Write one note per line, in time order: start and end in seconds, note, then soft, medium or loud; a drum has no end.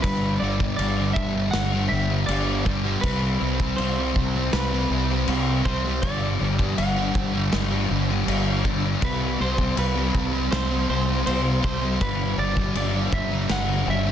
0.02 0.38 G1 medium
0.02 0.40 G2 medium
0.02 0.41 D3 loud
0.02 0.43 G3 loud
0.02 0.39 B4 medium
0.02 kick loud
0.02 crash medium
0.40 0.75 G1 medium
0.40 0.77 G2 medium
0.40 0.60 D3 medium
0.40 0.59 G3 medium
0.40 0.75 D5 medium
0.59 0.78 D3 medium
0.59 0.80 G3 medium
0.59 kick medium
0.76 1.13 G1 medium
0.76 1.35 G2 medium
0.76 0.98 D3 medium
0.76 1.13 D5 medium
0.76 crash medium
0.81 0.97 G3 loud
0.98 1.35 D3 medium
0.98 1.34 G3 medium
1.13 1.51 E5 medium
1.13 kick medium
1.35 1.73 D3 medium
1.35 1.72 G3 medium
1.51 1.87 G1 loud
1.51 1.88 F#5 loud
1.51 snare loud
1.51 crash medium
1.72 1.91 D3 medium
1.72 1.93 G3 medium
1.89 2.25 G1 loud
1.89 2.27 G2 medium
1.89 2.10 D3 medium
1.89 2.26 E5 loud
1.93 2.09 G3 medium
2.09 2.28 D3 medium
2.09 2.30 G3 medium
2.26 2.95 G1 loud
2.26 2.63 G2 loud
2.26 2.65 D3 loud
2.26 2.67 G3 loud
2.26 3.01 D5 medium
2.26 crash medium
2.65 3.01 G2 medium
2.65 2.86 D3 medium
2.65 2.84 G3 loud
2.65 kick medium
2.85 3.03 D3 medium
2.85 3.05 G3 medium
3.01 3.37 C2 medium
3.01 3.39 C3 loud
3.01 3.41 G3 loud
3.01 3.76 B4 loud
3.01 kick loud
3.01 crash medium
3.06 3.42 C4 loud
3.41 3.75 C2 medium
3.41 3.78 C3 medium
3.41 3.62 G3 medium
3.41 3.59 C4 medium
3.60 3.80 G3 medium
3.60 3.80 C4 medium
3.60 kick medium
3.76 4.12 C2 medium
3.76 4.35 C3 medium
3.76 4.53 C5 medium
3.76 crash medium
3.81 4.00 G3 medium
3.81 3.97 C4 medium
3.98 4.38 G3 medium
3.98 4.35 C4 medium
4.16 4.50 C2 medium
4.16 kick medium
4.36 4.74 G3 medium
4.36 4.72 C4 medium
4.53 4.87 C2 medium
4.53 5.65 B4 loud
4.53 snare loud
4.53 crash medium
4.73 4.92 G3 medium
4.73 4.92 C4 medium
4.90 5.24 C2 medium
4.90 5.26 C3 medium
4.90 5.12 G3 medium
4.90 5.09 C4 medium
5.10 5.29 G3 medium
5.10 5.29 C4 medium
5.28 5.62 C2 loud
5.28 5.64 C3 loud
5.28 5.66 G3 loud
5.28 5.66 C4 loud
5.28 crash medium
5.65 5.99 C2 medium
5.65 6.01 C3 medium
5.65 5.86 G3 medium
5.65 5.83 C4 medium
5.65 6.02 C5 medium
5.65 kick medium
5.85 6.04 G3 medium
5.85 6.01 C4 medium
6.02 6.37 G1 medium
6.02 6.39 G2 medium
6.02 6.40 D3 loud
6.02 6.42 G3 loud
6.02 6.78 D5 medium
6.02 kick loud
6.02 crash medium
6.40 6.74 G1 medium
6.40 6.76 G2 medium
6.40 6.59 D3 medium
6.40 6.58 G3 medium
6.58 6.77 D3 medium
6.58 6.79 G3 medium
6.58 kick medium
6.77 7.11 G1 medium
6.77 7.34 G2 medium
6.77 6.97 D3 medium
6.77 6.96 G3 loud
6.77 7.53 F#5 medium
6.77 crash medium
6.96 7.34 D3 medium
6.96 7.33 G3 medium
7.15 7.49 G1 loud
7.15 kick medium
7.33 7.71 D3 medium
7.33 7.70 G3 medium
7.53 7.86 G1 loud
7.53 7.86 E5 medium
7.53 snare loud
7.53 crash medium
7.70 7.89 D3 medium
7.70 7.91 G3 medium
7.89 8.24 G1 medium
7.89 8.25 G2 medium
7.89 8.10 D3 medium
7.89 8.09 G3 medium
8.09 8.27 D3 medium
8.09 8.28 G3 medium
8.27 8.94 G1 medium
8.27 8.63 G2 medium
8.27 8.65 D3 loud
8.27 8.66 G3 loud
8.27 crash medium
8.64 9.00 G2 medium
8.64 8.85 D3 medium
8.64 8.84 G3 medium
8.64 kick medium
8.84 9.01 D3 medium
8.84 9.02 G3 medium
9.02 9.36 C2 medium
9.02 9.37 C3 medium
9.02 9.40 G3 medium
9.02 9.40 C4 loud
9.02 9.41 B4 medium
9.02 kick loud
9.02 crash medium
9.39 9.73 C2 medium
9.39 9.75 C3 medium
9.39 9.60 G3 medium
9.39 9.57 C4 medium
9.39 9.78 C5 medium
9.58 9.77 G3 medium
9.58 9.77 C4 medium
9.58 kick medium
9.77 10.10 C2 medium
9.77 10.33 C3 medium
9.77 9.97 G3 medium
9.77 9.94 C4 medium
9.77 10.51 B4 medium
9.77 crash medium
9.95 10.34 G3 medium
9.95 10.31 C4 medium
10.15 10.48 C2 medium
10.15 kick medium
10.33 10.72 G3 medium
10.33 10.69 C4 medium
10.51 10.85 C2 loud
10.51 10.89 C5 loud
10.51 snare loud
10.51 crash medium
10.71 10.89 G3 medium
10.71 10.90 C4 medium
10.89 11.22 C2 loud
10.89 11.25 C3 medium
10.89 11.09 G3 medium
10.89 11.06 C4 medium
10.89 11.25 C5 medium
11.08 11.27 G3 medium
11.08 11.28 C4 medium
11.26 11.60 C2 medium
11.26 11.62 C3 medium
11.26 11.64 G3 loud
11.26 11.64 C4 loud
11.26 11.63 C5 medium
11.26 crash medium
11.63 11.97 C2 medium
11.63 11.98 C3 medium
11.63 11.83 G3 medium
11.63 11.80 C4 medium
11.63 12.01 C5 medium
11.63 kick medium
11.81 12.03 G3 medium
11.81 11.98 C4 medium
12.01 12.34 G1 medium
12.01 12.37 G2 loud
12.01 12.39 D3 loud
12.01 12.40 G3 loud
12.01 12.39 B4 loud
12.01 kick loud
12.01 crash medium
12.38 12.71 G1 medium
12.38 12.74 G2 medium
12.38 12.58 D3 medium
12.38 12.56 G3 medium
12.38 12.76 D5 medium
12.56 12.75 D3 medium
12.56 12.77 G3 medium
12.56 kick medium
12.75 13.09 G1 medium
12.75 13.32 G2 medium
12.75 12.94 D3 medium
12.75 12.92 G3 loud
12.75 13.13 D5 medium
12.75 crash medium
12.93 13.32 D3 medium
12.93 13.30 G3 medium
13.13 13.46 G1 medium
13.13 13.51 E5 medium
13.13 kick medium
13.31 13.69 D3 medium
13.31 13.67 G3 medium
13.50 13.83 G1 loud
13.50 13.89 F#5 loud
13.50 snare loud
13.50 crash medium
13.68 13.87 D3 medium
13.68 13.87 G3 medium
13.86 14.12 G1 loud
13.86 14.12 G2 medium
13.86 14.06 D3 medium
13.86 14.04 G3 medium
13.86 14.12 E5 medium
14.05 14.12 D3 medium
14.05 14.12 G3 medium